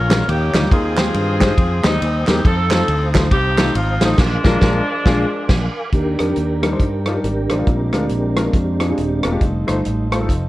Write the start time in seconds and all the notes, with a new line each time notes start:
Already playing: A#1 A#2 C#4 F4 A#4 F5 G#5 C#6
0.09 G#3 C#4 F4 A#4, snare, clap, ride
0.27 D#2 D#3 A#3 C#4 G4 C#5 G5 D#6, ride
0.53 D2 G3 D#4 F4 C#5, snare, clap, ride
0.71 D#2 D#3 C4 F4 G#4 C5 G#5, kick, ride
0.97 G#3 D#4 G4 C5, snare, clap, ride
1.14 G2, ride
1.40 G#3 D#4 G4 C5, kick, snare, clap, ride
1.58 F2, kick, ride
1.83 D#2 G3 G#3 C4 D#4 G4 C5, snare, clap, ride
2.02 D#2, ride
2.27 E2 G#3 D#4 G4 A#4, snare, clap, ride
2.45 F2 C4 D#4 A4 F5 A5, kick, ride
2.71 A3 C4 D#4 F4 A4 C5, snare, clap, ride
2.88 D2, ride
3.14 A3 D#4 F4 C5, kick, snare, clap, ride
3.31 C2 C4 D#4 G4, kick, ride
3.58 A3 D#4 F4 A4, snare, clap, ride
3.74 G#1 F4, ride
4.01 A1 A3 D#4 F4 C5, snare, clap, ride
4.17 A#1 F3 G#3 D4 A#4 G#5 D6, kick, snare, crash
4.44 A#1 G#3 D4 F4 A#4, kick, snare
4.61 A#1 G#3 D4 F4 A#4, kick, snare
5.05 A#1 G#3 D4 F4 G#4, kick, snare
5.49 A#1, kick, snare, crash
5.92 D#2 D#3 D4 G4 A#4 D5 G5, kick, closed hi-hat
6.19 F2 G3 D4 D#4 A#4, cross-stick, closed hi-hat
6.36 D#2, closed hi-hat
6.62 F3 G3 D4 D#4 A#4, cross-stick, closed hi-hat
6.72 G3 D4 D#4 C5
6.80 G2, kick, closed hi-hat
7.06 G3 D4 D#4 F4, cross-stick, closed hi-hat
7.15 G3 D4 D#4 A#4
7.24 G#1 D4 G4 A#4, closed hi-hat
7.50 A1 G3 D4 D#4 C5, cross-stick, closed hi-hat
7.59 G3 D4 D#4 F4
7.67 A#1 A#2 G#3 C4 D4 F5, kick, closed hi-hat
7.93 D2 G#3 D4 F4 A#4, cross-stick, closed hi-hat
8.10 A#1, closed hi-hat
8.37 G#3 D4 F4 A#4, cross-stick, closed hi-hat
8.46 G#3 D4 F4 A#4
8.54 F2 D4 G4, kick, closed hi-hat
8.80 G#3 D4 F4 G#4, cross-stick, closed hi-hat
8.89 G#3 D4 F4 G#4
8.98 D#1, closed hi-hat
9.24 E1 G#3 D4 F4 A#4, cross-stick, closed hi-hat
9.32 G#3 D4 F4 G4
9.40 F1 G3 A3 D#4 A4 C5 D#5, kick, closed hi-hat
9.67 G1 A3 D#4 F4 C5, cross-stick, closed hi-hat
9.85 A1, closed hi-hat
10.11 G3 A3 D#4 F4 C5, cross-stick, closed hi-hat
10.20 A3 D#4 F4 A4
10.29 F1, kick, closed hi-hat